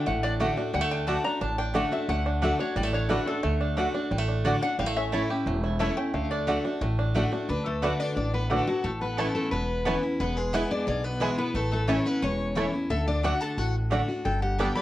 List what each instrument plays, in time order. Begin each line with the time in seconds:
Already playing: five-string banjo D4
0.06 upright bass A1, steel-string acoustic guitar A2, five-string banjo A3, resonator guitar played with a steel bar F#5
0.23 five-string banjo D4, resonator guitar played with a steel bar D5
0.39 steel-string acoustic guitar D3 A3 D4 F#4, mandolin A3 F#4 D5 F#5, five-string banjo A3
0.57 five-string banjo D4, steel-string acoustic guitar D4 F#4
0.73 upright bass D2, steel-string acoustic guitar D3, five-string banjo G3, resonator guitar played with a steel bar F#5
0.81 five-string banjo A3
0.91 five-string banjo D4, resonator guitar played with a steel bar G5
1.07 steel-string acoustic guitar D3 A3 D4 F#4, mandolin A3 F#4 D5 F#5, five-string banjo A3, resonator guitar played with a steel bar A5
1.24 five-string banjo D4, steel-string acoustic guitar D4 F#4, resonator guitar played with a steel bar A#5
1.41 upright bass A1, steel-string acoustic guitar A2, five-string banjo D4, resonator guitar played with a steel bar A5
1.58 five-string banjo D4, resonator guitar played with a steel bar G5
1.74 steel-string acoustic guitar D3 A3 D4 F#4, mandolin A3 F#4 D5 F#5, five-string banjo A3, resonator guitar played with a steel bar F#5
1.92 five-string banjo D4, steel-string acoustic guitar D4 F#4, resonator guitar played with a steel bar E5
2.09 upright bass D2, steel-string acoustic guitar D3, five-string banjo A3, resonator guitar played with a steel bar F#5
2.26 five-string banjo D4
2.42 steel-string acoustic guitar D3 A3 D4 F#4, mandolin A3 F#4 D5 F#5, five-string banjo D4, resonator guitar played with a steel bar E5
2.59 five-string banjo D4, steel-string acoustic guitar D4 F#4, resonator guitar played with a steel bar C#5
2.76 upright bass A1, steel-string acoustic guitar A2, five-string banjo G3, resonator guitar played with a steel bar D5
2.83 five-string banjo A3
2.93 five-string banjo D4, resonator guitar played with a steel bar C#5
3.09 steel-string acoustic guitar D3 A3 D4 F#4, mandolin A3 F#4 D5 F#5, five-string banjo A3, resonator guitar played with a steel bar B4
3.26 five-string banjo D4, steel-string acoustic guitar D4 F#4, resonator guitar played with a steel bar A4
3.43 upright bass D2, steel-string acoustic guitar D3, five-string banjo A3
3.61 five-string banjo D4
3.77 steel-string acoustic guitar D3 A3 D4 F#4, mandolin A3 F#4 D5 F#5, five-string banjo D4
3.94 five-string banjo D4, steel-string acoustic guitar D4 F#4
4.11 upright bass A1, steel-string acoustic guitar A2, five-string banjo G3
4.18 five-string banjo A3
4.29 five-string banjo D4
4.45 steel-string acoustic guitar D3 A3 D4 F#4, mandolin A3 F#4 D5 F#5, five-string banjo D4, resonator guitar played with a steel bar D5
4.62 five-string banjo D4, steel-string acoustic guitar D4 F#4, resonator guitar played with a steel bar F#5
4.79 upright bass A1, steel-string acoustic guitar A2, five-string banjo G3, resonator guitar played with a steel bar F5
4.86 five-string banjo A3
4.97 five-string banjo C#4, resonator guitar played with a steel bar E5
5.12 steel-string acoustic guitar E3 A3 C#4 E4, mandolin A3 E4 C#5 A5, five-string banjo E4
5.29 steel-string acoustic guitar C#4 E4, five-string banjo G4
5.46 upright bass E1, steel-string acoustic guitar E2, five-string banjo A3
5.64 five-string banjo E4
5.79 steel-string acoustic guitar E3 A3 C#4 E4, mandolin A3 E4 C#5 A5, five-string banjo A3, resonator guitar played with a steel bar E5
5.97 five-string banjo C#4, steel-string acoustic guitar C#4 E4, resonator guitar played with a steel bar G5
6.14 upright bass D2, steel-string acoustic guitar D3, five-string banjo A3, resonator guitar played with a steel bar F5
6.31 five-string banjo D4, resonator guitar played with a steel bar D5
6.47 steel-string acoustic guitar D3 A3 D4 F#4, mandolin A3 F#4 D5 F#5, five-string banjo A3
6.65 five-string banjo D4, steel-string acoustic guitar D4 F#4
6.81 upright bass A1, steel-string acoustic guitar A2, five-string banjo A3
6.99 five-string banjo D4
7.14 steel-string acoustic guitar D3 A3 D4 F#4, mandolin A3 F#4 D5 F#5, five-string banjo A3
7.32 five-string banjo D4, steel-string acoustic guitar D4 F#4
7.49 upright bass D2, steel-string acoustic guitar D3 B4, resonator guitar played with a steel bar D4
7.66 resonator guitar played with a steel bar A3, steel-string acoustic guitar A4
7.82 steel-string acoustic guitar D3 A3 D4 F#4 B4, mandolin A3 F#4 D5 F#5, five-string banjo A3 D4, resonator guitar played with a steel bar D4
8.00 resonator guitar played with a steel bar D4, steel-string acoustic guitar D5
8.16 upright bass A1, steel-string acoustic guitar A2 D5, resonator guitar played with a steel bar D4
8.33 resonator guitar played with a steel bar B3, steel-string acoustic guitar B4
8.50 steel-string acoustic guitar D3 A3 D4 F#4 A4, resonator guitar played with a steel bar A3, mandolin A3 F#4 D5 F#5, five-string banjo A3 D4
8.67 resonator guitar played with a steel bar F#3, steel-string acoustic guitar F#4
8.84 upright bass A1, steel-string acoustic guitar A2 A4, resonator guitar played with a steel bar A3
9.01 resonator guitar played with a steel bar B3, steel-string acoustic guitar B4
9.17 steel-string acoustic guitar E3 B3 C#4 E4 A4, resonator guitar played with a steel bar A3, five-string banjo A3 B3 E4, mandolin B3 E4 C#5 A5
9.35 resonator guitar played with a steel bar A3, steel-string acoustic guitar A4
9.51 upright bass E1, steel-string acoustic guitar E2 B4, resonator guitar played with a steel bar B3
9.85 steel-string acoustic guitar E3 B3 C#4 E4, five-string banjo A3 B3 E4, mandolin B3 E4 C#5 A5
10.03 steel-string acoustic guitar C#4 E4
10.20 upright bass E1, steel-string acoustic guitar E2 B4, resonator guitar played with a steel bar B3
10.37 resonator guitar played with a steel bar G#3, steel-string acoustic guitar G#4
10.53 steel-string acoustic guitar E3 G#3 B3 E4 B4, five-string banjo G#3 B3 E4, mandolin B3 E4 B4 G#5, resonator guitar played with a steel bar B3
10.71 resonator guitar played with a steel bar D4, steel-string acoustic guitar D5
10.87 upright bass B1, steel-string acoustic guitar B2 D5, resonator guitar played with a steel bar G#4
11.04 resonator guitar played with a steel bar B3, steel-string acoustic guitar B4
11.20 steel-string acoustic guitar E3 G#3 B3 E4 G#4, five-string banjo G#3 B3 E4, resonator guitar played with a steel bar G#3, mandolin B3 E4 B4 G#5
11.38 resonator guitar played with a steel bar B3, steel-string acoustic guitar B3 E4 B4
11.55 upright bass A1, steel-string acoustic guitar A2 A4, resonator guitar played with a steel bar A3
11.72 resonator guitar played with a steel bar A3, steel-string acoustic guitar A4
11.88 steel-string acoustic guitar E3 A3 C#4 E4 C#5, mandolin A3 E4 C#5 A5, five-string banjo A3 C#4 E4, resonator guitar played with a steel bar C#4
12.05 resonator guitar played with a steel bar B3, steel-string acoustic guitar C#4 E4 B4
12.22 upright bass E1, steel-string acoustic guitar E2 C#5, resonator guitar played with a steel bar C#4
12.55 steel-string acoustic guitar E3 A3 C#4 E4, mandolin A3 E4 C#5 A5, five-string banjo A3 C#4 E4
12.73 steel-string acoustic guitar C#4 E4
12.90 upright bass D2, steel-string acoustic guitar D3 E5, resonator guitar played with a steel bar A4
13.08 resonator guitar played with a steel bar D4, steel-string acoustic guitar D5
13.23 steel-string acoustic guitar D3 A3 D4 F#4 F#5, mandolin A3 F#4 D5 F#5, five-string banjo A3 D4, resonator guitar played with a steel bar F#4
13.41 resonator guitar played with a steel bar A4, steel-string acoustic guitar A5
13.58 upright bass A1, steel-string acoustic guitar A2 F#5, resonator guitar played with a steel bar F#4
13.91 steel-string acoustic guitar D3 A3 D4 F#4, mandolin A3 F#4 D5 F#5, five-string banjo A3 D4
14.08 steel-string acoustic guitar D4 F#4
14.25 upright bass G1, steel-string acoustic guitar G2 G5, resonator guitar played with a steel bar A4
14.42 resonator guitar played with a steel bar G4, steel-string acoustic guitar F#5
14.58 steel-string acoustic guitar D3 G3 B3 G4 G5, five-string banjo G3 B3 D4, mandolin B3 G4 D5 A5, resonator guitar played with a steel bar A4
14.75 steel-string acoustic guitar B3 G4 B5, resonator guitar played with a steel bar D5